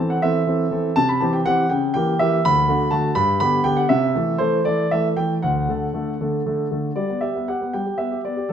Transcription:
Already playing: E3
0.00 C4 A4
0.10 F#5
0.22 E3 C4 A4 E5
0.47 E3 C4 A4
0.71 E3 C4 A4
0.96 C3 A5
1.09 B5
1.21 E3 C4 G4 A5
1.33 G5
1.46 E3 C4 G4 F#5
1.70 C#3 G5
1.94 E3 A#3 G4 G5
2.19 E3 A#3 G4 E5
2.45 D2 B5
2.68 D3 A3 F#4
2.91 D3 A3 F#4 A5
3.15 G2 B5
3.40 D3 B3 G4 B5
3.64 D3 B3 G4 G5
3.77 F#5
3.89 C3 E5
4.15 E3 A3 A4
4.38 E3 A3 A4 C5
4.65 E3 A3 A4 D5
4.91 E3 A3 A4 E5
5.17 E3 A3 A4 G5
5.42 D2 F#5
5.69 D3 A3 A4
5.94 D3 A3 A4
6.21 D3 A3 A4
6.46 D3 A3 A4
6.71 D3 A3 A4
6.96 G3 D5
7.09 B3
7.21 G4 E5
7.36 B3
7.48 G4 F#5
7.61 B3
7.73 G3 G5
7.86 G4
7.98 B3 E5
8.11 G4
8.25 B3 D5
8.37 G4
8.49 F#3 A4

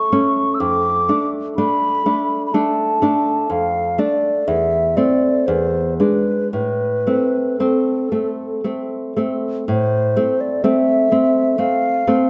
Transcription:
Already playing: C#6
0.12 A3 C#4
0.54 E6
0.60 F2 D6
1.09 A3 D4
1.56 A3 D4 B5
2.06 A3 D4
2.46 B5
2.54 A3 D4 A5
3.02 A3 D4
3.50 F2 F5
3.98 A3 D4 D5
4.47 E2 E5
4.96 A3 C4 D5
5.46 E2 C5
5.99 G#3 D4 B4
6.53 A2 B4
7.07 A3 C4
7.59 A3 C4 A4
8.12 A3 C4
8.64 A3 C4
9.17 A3 C4
9.68 A2 C5
10.16 A3 C4
10.40 D5
10.63 A3 C4 E5
11.12 A3 C4
11.58 A3 C4 F5
12.07 A3 C4

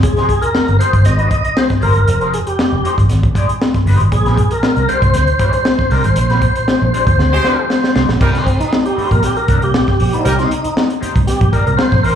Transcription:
0.03 F1 G#4, muted clean electric guitar stroke, kick, closed hi-hat
0.17 G#3 D#4 G4 C5, snare, closed hi-hat
0.29 muted clean electric guitar stroke, kick, closed hi-hat
0.42 A#4, muted clean electric guitar stroke, closed hi-hat
0.54 muted clean electric guitar stroke, snare
0.68 G1, muted clean electric guitar stroke, closed hi-hat
0.79 G#3 D#4 G4 C5, closed hi-hat
0.93 G1, muted clean electric guitar stroke, kick, closed hi-hat
1.05 G#1 D#5, muted clean electric guitar stroke, snare, closed hi-hat
1.18 G#3 D#4 G4 C5, closed hi-hat
1.30 muted clean electric guitar stroke, kick, closed hi-hat
1.44 muted clean electric guitar stroke, closed hi-hat
1.57 C5, snare
1.70 muted clean electric guitar stroke, kick, snare, closed hi-hat
1.80 G1 G#3 D#4 G4 A#4 C5, open hi-hat
1.95 G1, muted clean electric guitar stroke, closed hi-hat
2.07 F1, muted clean electric guitar stroke, closed hi-hat
2.20 G#3 D#4 G4 C5, closed hi-hat
2.32 G#4, muted clean electric guitar stroke, closed hi-hat
2.47 G4, muted clean electric guitar stroke, closed hi-hat
2.59 muted clean electric guitar stroke, snare
2.72 F1, muted clean electric guitar stroke
2.84 G#3 D#4 G4 C5, closed hi-hat
2.97 G#1, muted clean electric guitar stroke, kick, closed hi-hat
3.09 G#1, muted clean electric guitar stroke, snare, closed hi-hat
3.23 muted clean electric guitar stroke, kick, closed hi-hat
3.35 G#3 D#4 G4 D5, kick, closed hi-hat
3.48 muted clean electric guitar stroke, closed hi-hat
3.62 snare
3.74 muted clean electric guitar stroke, kick, snare, closed hi-hat
3.86 G1 G#3 D#4 G4 C5, open hi-hat
4.00 G#1, muted clean electric guitar stroke, closed hi-hat
4.12 A#1 G#4, muted clean electric guitar stroke, kick, closed hi-hat
4.25 G#3 D4 G4 C5, snare, closed hi-hat
4.37 muted clean electric guitar stroke, kick, closed hi-hat
4.51 A#4, muted clean electric guitar stroke, closed hi-hat
4.63 muted clean electric guitar stroke, snare
4.76 C2, muted clean electric guitar stroke, closed hi-hat
4.88 G#3 D4 G4 C5, closed hi-hat
5.02 C2, muted clean electric guitar stroke, kick, closed hi-hat
5.14 D2, muted clean electric guitar stroke, snare, closed hi-hat
5.27 muted clean electric guitar stroke, closed hi-hat
5.39 G#3 D4 G4 D5, kick, closed hi-hat
5.53 C5, muted clean electric guitar stroke, closed hi-hat
5.65 snare
5.78 muted clean electric guitar stroke, kick, snare
5.90 C2 G#3 D4 G4 A#4 C5, open hi-hat
6.04 G#1 C5, muted clean electric guitar stroke, closed hi-hat
6.16 A#1, muted clean electric guitar stroke, closed hi-hat
6.30 G#3 D4 G4 C5, snare, closed hi-hat
6.42 muted clean electric guitar stroke, kick, closed hi-hat
6.55 muted clean electric guitar stroke, closed hi-hat
6.68 muted clean electric guitar stroke, snare
6.82 A#1, muted clean electric guitar stroke
6.93 G#3 D4 G4 C5, closed hi-hat
7.06 D2, muted clean electric guitar stroke, kick, closed hi-hat
7.17 D2, muted clean electric guitar stroke, snare
7.32 G#3 G4 C5, muted clean electric guitar stroke
7.43 G#3 D4 G4 D5, snare
7.57 muted clean electric guitar stroke
7.70 snare
7.83 muted clean electric guitar stroke, snare
7.93 C2 G#3 D4 G4 C5, snare
8.07 A#1, muted clean electric guitar stroke, snare
8.18 C2 G3 D#4 A#4, muted clean electric guitar stroke, kick, crash
8.32 A#3 D#4 G4 C5, snare, closed hi-hat
8.45 C4, muted clean electric guitar stroke, kick, closed hi-hat
8.59 D#4, muted clean electric guitar stroke, muted fingered electric bass stroke, closed hi-hat
8.70 muted clean electric guitar stroke, snare
8.84 G4, muted clean electric guitar stroke, closed hi-hat
8.95 A#3 D#4 G4 C5, muted fingered electric bass stroke, open hi-hat
9.11 A#1 A#4, muted clean electric guitar stroke, kick, closed hi-hat
9.23 G4, muted clean electric guitar stroke, snare, closed hi-hat
9.36 A#4, muted clean electric guitar stroke, closed hi-hat
9.48 C2 A#3 D#4 G4 D5, kick, closed hi-hat
9.62 G4, muted clean electric guitar stroke, closed hi-hat
9.74 A#1, muted clean electric guitar stroke, snare
9.88 G4, muted clean electric guitar stroke, kick, snare
10.00 A#1, open hi-hat
10.13 A#3 D#4 G4 C5, closed hi-hat
10.25 C2 G3 D#4 G4 A#4, muted clean electric guitar stroke, closed hi-hat
10.38 A#3 D#4 G4 C5, snare, closed hi-hat
10.51 muted clean electric guitar stroke, closed hi-hat
10.64 muted clean electric guitar stroke, muted fingered electric bass stroke, closed hi-hat
10.76 muted clean electric guitar stroke, snare
10.89 muted clean electric guitar stroke, closed hi-hat
11.00 A#3 D#4 G4 C5, muted fingered electric bass stroke, closed hi-hat
11.15 C2, muted clean electric guitar stroke, kick, closed hi-hat
11.27 G4, muted clean electric guitar stroke, muted fingered electric bass stroke, snare, closed hi-hat
11.41 A#1, muted clean electric guitar stroke, kick, closed hi-hat
11.53 A#3 D#4 G4 A#4 D5, kick, closed hi-hat
11.66 C2 A#4, muted clean electric guitar stroke, closed hi-hat
11.77 C5, snare
11.92 A#1, muted clean electric guitar stroke, kick, snare
12.03 A1 A#3 D#4 G4 A#4 C5, open hi-hat

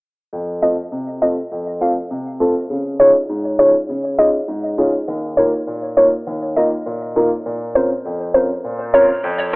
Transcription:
0.33 F2
0.62 A3 C4 F4 A4 D#5
0.92 C3
1.21 A3 C4 F4 A4 D#5
1.51 F2
1.81 A3 C4 F4 A4 F5
2.11 C3
2.40 A3 C4 F4 A4
2.70 C#3
3.00 C#4 D#4 F4 G#4 C#5
3.29 G#2
3.59 C#4 D#4 F4 G#4 C#5
3.89 C#3
4.18 C#4 D#4 F4 G#4 D#5
4.48 G#2
4.78 C#4 D#4 F4 G#4
5.08 D#2
5.37 A#3 D#4 F4 A#4 C#5
5.67 A#2
5.97 A#3 D#4 F4 A#4 C#5
6.27 D#2
6.56 A#3 D#4 F4 A#4 D#5
6.86 A#2
7.16 A#3 D#4 F4 A#4
7.46 A#2
7.75 C4 C#4 F4 A#4 C5
8.05 F2
8.34 C4 C#4 F4 A#4 C5
8.64 A#2
8.94 C4 C#4 F4 A#4 C#5
9.24 F2

